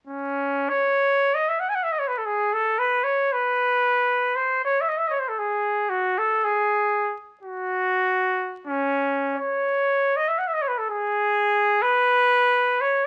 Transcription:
0.07 C#4
0.69 C#5
1.34 D#5
1.49 E5
1.60 F#5
1.69 G#5
1.75 F#5
1.83 E5
1.92 D#5
1.99 C#5
2.08 B4
2.18 A4
2.26 G#4
2.53 A4
2.79 B4
3.04 C#5
3.33 B4
4.36 C5
4.65 C#5
4.81 E5
4.89 D#5
4.98 E5
5.07 C#5 D#5
5.20 C5
5.29 A4
5.39 G#4
5.90 F#4
6.19 A4
6.44 G#4
7.43 F#4
8.67 C#4
9.36 C#5
10.17 D#5
10.28 E5
10.38 F#5
10.48 E5
10.54 D#5
10.62 C#5
10.68 B4
10.78 A4
10.90 G#4
11.82 B4
12.81 C#5

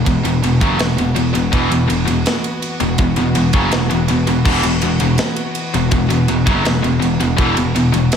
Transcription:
Already playing: E3 B3 F#4
0.05 E1 E2 B2, kick, ride
0.23 E1 E2 B2, ride
0.42 E1 E2 B2, ride
0.60 F#1 F#2 C#3 F#3, kick, ride
0.79 E1 E2 B2, snare, ride
0.97 E1 E2 B2, ride
1.15 E1 E2 B2, ride
1.33 E1 E2 B2, ride
1.52 E1 E2 B2 E3, kick, ride
1.70 E1 E2 B2, ride
1.88 E1 E2 B2, ride
2.07 E1 E2 B2, ride
2.26 snare, ride
2.44 ride
2.62 ride
2.80 E1 E2 B2, ride
2.98 E1 E2 B2, kick, ride
3.16 E1 E2 B2, ride
3.35 E1 E2 B2, ride
3.53 F#1 F#2 C#3 F#3, kick, ride
3.71 E1 E2 B2, snare, ride
3.90 E1 E2 B2, ride
4.08 E1 E2 B2, ride
4.27 E1 E2 B2, ride
4.45 E1 E2 B2 E3, kick, crash
4.63 E1 E2 B2, ride
4.82 E1 E2 B2, ride
5.00 E1 E2 B2, ride
5.18 snare, ride
5.36 ride
5.55 ride
5.74 E1 E2 B2, ride
5.91 E1 E2 B2, kick, ride
6.10 E1 E2 B2, ride
6.28 E1 E2 B2, ride
6.46 F#1 F#2 C#3 F#3, kick, ride
6.65 E1 E2 B2, snare, ride
6.83 E1 E2 B2, ride
7.01 E1 E2 B2, ride
7.19 E1 E2 B2, ride
7.37 E1 E2 B2 E3, kick, ride
7.56 E1 E2 B2, ride
7.75 E1 E2 B2, ride
7.92 E1 E2 B2, ride
8.12 snare, ride

